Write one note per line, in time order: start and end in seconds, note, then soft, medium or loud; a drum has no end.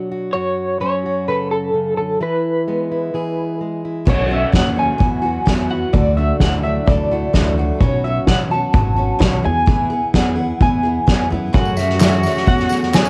0.00 0.31 B2 medium
0.00 0.79 F#3 soft
0.00 0.32 D4 medium
0.00 0.10 F#4 medium
0.00 0.33 C#5 medium
0.12 0.32 F#4 soft
0.33 2.20 F#2 medium
0.33 1.04 F#4 medium
0.33 0.80 C#5 medium
0.80 2.21 F#3 medium
0.80 2.18 C#4 medium
0.80 1.24 C#5 medium
1.06 2.19 F#4 soft
1.28 1.73 C#3 medium
1.28 2.18 A4 medium
1.28 1.51 B4 medium
1.51 1.96 A4 medium
1.74 1.97 C#3 soft
1.97 2.20 D3 soft
1.97 2.21 A4 medium
2.20 3.13 E3 medium
2.20 2.90 E4 medium
2.20 3.58 B4 medium
2.68 3.59 G#3 soft
2.68 4.32 B3 soft
2.92 3.84 E4 soft
3.14 4.05 E3 medium
3.14 4.08 G#4 medium
3.61 4.05 G#3 soft
3.85 4.05 E4 soft
4.05 4.43 B1 medium
4.05 4.30 B2 medium
4.05 4.99 B2 medium
4.05 4.30 F#3 medium
4.05 4.30 B3 medium
4.05 4.29 C#4 medium
4.05 4.27 F#4 medium
4.05 kick loud
4.05 crash medium
4.09 4.30 C#5 medium
4.28 4.52 B3 soft
4.28 4.53 C#4 soft
4.28 4.53 F#4 soft
4.32 4.78 C#4 soft
4.32 4.54 E5 medium
4.52 4.90 D#2 medium
4.52 4.77 B2 medium
4.52 4.77 F#3 medium
4.52 6.40 F#3 medium
4.52 4.77 B3 medium
4.52 4.75 C#4 medium
4.52 4.73 F#4 medium
4.52 5.05 F#4 soft
4.52 4.79 F#5 medium
4.52 kick medium
4.52 snare loud
4.75 4.98 B3 soft
4.75 5.00 C#4 soft
4.75 4.99 F#4 soft
4.79 4.99 C#4 medium
4.79 5.70 G#5 medium
4.98 5.37 E2 medium
4.98 5.23 E3 medium
4.98 5.92 E3 medium
4.98 5.23 B3 medium
4.98 5.22 E4 medium
4.98 5.21 F#4 medium
4.98 kick loud
5.22 5.45 B3 soft
5.22 5.46 E4 soft
5.22 5.46 F#4 medium
5.26 5.71 F#4 medium
5.45 5.83 E2 medium
5.45 5.70 E3 medium
5.45 5.70 B3 medium
5.45 5.95 B3 medium
5.45 5.70 E4 loud
5.45 5.69 F#4 medium
5.45 5.92 B4 medium
5.45 kick medium
5.45 snare loud
5.70 5.94 B3 soft
5.70 5.94 E4 soft
5.70 5.93 F#4 soft
5.70 6.42 F#4 medium
5.70 5.95 F#5 medium
5.93 6.30 D2 loud
5.93 6.17 D3 medium
5.93 7.78 D3 medium
5.93 6.17 E3 medium
5.93 6.18 A3 medium
5.93 6.17 D4 medium
5.93 6.16 F#4 medium
5.93 6.18 D5 medium
5.93 kick medium
6.17 6.40 A3 soft
6.17 6.40 D4 soft
6.17 6.64 D4 medium
6.17 6.41 F#4 medium
6.17 6.40 E5 medium
6.40 6.76 D2 medium
6.40 6.64 D3 medium
6.40 6.64 E3 medium
6.40 7.33 F#3 medium
6.40 6.64 A3 medium
6.40 6.63 D4 medium
6.40 7.10 E4 medium
6.40 6.62 F#4 medium
6.40 6.63 F#5 medium
6.40 kick medium
6.40 snare loud
6.63 6.86 A3 soft
6.63 6.87 D4 soft
6.63 7.79 D4 medium
6.63 6.87 F#4 soft
6.63 6.88 E5 medium
6.86 7.23 D2 medium
6.86 7.79 A2 medium
6.86 7.10 E3 medium
6.86 7.11 A3 medium
6.86 7.12 D4 medium
6.86 7.10 F#4 medium
6.86 7.79 A4 medium
6.86 7.54 D5 medium
6.86 kick loud
7.11 7.33 A3 soft
7.11 7.34 D4 soft
7.11 7.79 E4 medium
7.11 7.35 F#4 medium
7.33 7.70 D2 medium
7.33 7.57 D3 medium
7.33 7.58 E3 medium
7.33 9.68 F#3 medium
7.33 7.58 A3 medium
7.33 7.58 D4 medium
7.33 7.57 F#4 medium
7.33 kick medium
7.33 snare loud
7.58 7.82 A3 medium
7.58 7.82 D4 medium
7.58 7.81 F#4 medium
7.80 8.17 B1 loud
7.80 8.05 B2 medium
7.80 8.05 F#3 medium
7.80 8.05 B3 medium
7.80 8.05 C#4 medium
7.80 8.03 F#4 medium
7.80 8.05 C#5 medium
7.80 kick loud
8.04 8.27 B3 soft
8.04 8.28 C#4 soft
8.04 8.28 F#4 medium
8.04 8.28 E5 medium
8.27 8.63 B1 medium
8.27 8.51 B2 medium
8.27 8.51 F#3 medium
8.27 8.51 B3 medium
8.27 8.52 C#4 medium
8.27 8.50 F#4 medium
8.27 8.51 F#5 loud
8.27 kick medium
8.27 snare loud
8.51 8.73 B3 soft
8.51 8.74 C#4 soft
8.51 8.74 F#4 medium
8.51 9.41 A5 loud
8.73 9.10 G#1 medium
8.73 8.97 F#3 medium
8.73 8.98 B3 medium
8.73 8.97 C#4 medium
8.73 8.95 F#4 medium
8.73 kick loud
8.96 9.18 B3 soft
8.96 9.19 C#4 soft
8.96 9.19 F#4 medium
9.19 9.39 B1 medium
9.19 9.43 B2 medium
9.19 9.44 F#3 medium
9.19 9.44 B3 medium
9.19 9.44 C#4 medium
9.19 9.42 F#4 medium
9.19 kick medium
9.19 snare loud
9.42 9.99 E2 medium
9.42 9.65 B3 soft
9.42 9.67 E4 soft
9.42 9.67 G#4 medium
9.42 10.11 G#5 loud
9.66 9.90 E3 medium
9.66 9.90 B3 medium
9.66 9.90 E4 medium
9.66 9.89 G#4 medium
9.66 kick loud
9.90 10.13 B3 soft
9.90 10.14 E4 soft
9.90 10.14 G#4 medium
10.14 10.50 E2 medium
10.14 10.37 E3 medium
10.14 10.38 B3 medium
10.14 10.36 E4 medium
10.14 10.34 G#4 medium
10.14 10.62 F#5 medium
10.14 kick medium
10.14 snare loud
10.36 10.60 B3 soft
10.36 10.61 E4 soft
10.36 10.60 G#4 medium
10.60 10.97 E2 loud
10.60 10.84 E3 medium
10.60 10.85 B3 medium
10.60 10.84 E4 medium
10.60 10.82 G#4 medium
10.60 11.28 G#5 medium
10.60 kick loud
10.83 11.06 B3 soft
10.83 11.07 E4 medium
10.83 11.07 G#4 medium
11.07 11.29 E2 medium
11.07 11.31 E3 medium
11.07 11.31 B3 medium
11.07 11.31 E4 medium
11.07 11.29 G#4 loud
11.07 kick medium
11.07 snare loud
11.30 11.53 F#2 medium
11.30 11.54 B3 medium
11.30 11.54 E4 medium
11.30 11.54 G#4 medium
11.53 11.77 F#2 medium
11.53 12.26 F#2 medium
11.53 11.77 C#3 medium
11.53 11.77 F#3 medium
11.53 11.77 A3 medium
11.53 11.76 C#4 medium
11.53 13.10 F#4 loud
11.53 11.74 G#4 medium
11.53 11.79 F#5 medium
11.53 kick loud
11.53 snare soft
11.53 tambourine soft
11.65 tambourine soft
11.76 11.98 F#3 soft
11.76 11.99 A3 soft
11.76 11.98 C#4 medium
11.76 11.99 G#4 medium
11.76 12.50 E5 medium
11.76 snare soft
11.76 tambourine medium
11.89 snare soft
11.99 12.23 F#2 medium
11.99 12.23 C#3 medium
11.99 12.24 F#3 medium
11.99 12.24 A3 medium
11.99 12.23 C#4 medium
11.99 12.22 G#4 medium
11.99 snare loud
11.99 clap loud
11.99 tambourine loud
12.12 tambourine soft
12.23 12.44 F#3 soft
12.23 12.45 A3 soft
12.23 12.46 C#4 medium
12.23 12.47 G#4 medium
12.23 snare soft
12.23 tambourine medium
12.35 snare soft
12.35 tambourine soft
12.45 13.01 E2 medium
12.45 12.70 F#3 medium
12.45 12.70 A3 medium
12.45 12.69 C#4 medium
12.45 12.68 G#4 medium
12.45 12.94 F#5 medium
12.45 kick loud
12.45 snare soft
12.45 tambourine soft
12.58 snare soft
12.58 tambourine soft
12.69 12.92 F#3 soft
12.69 12.93 A3 soft
12.69 12.93 C#4 soft
12.69 12.93 G#4 medium
12.69 snare soft
12.69 tambourine medium
12.81 snare soft
12.81 tambourine soft
12.93 13.10 F#2 medium
12.93 13.10 C#3 medium
12.93 13.10 F#3 medium
12.93 13.10 A3 medium
12.93 13.10 C#4 medium
12.93 13.10 G#4 loud
12.93 13.10 G#5 medium
12.93 snare loud
12.93 clap loud
12.93 tambourine medium
13.05 tambourine medium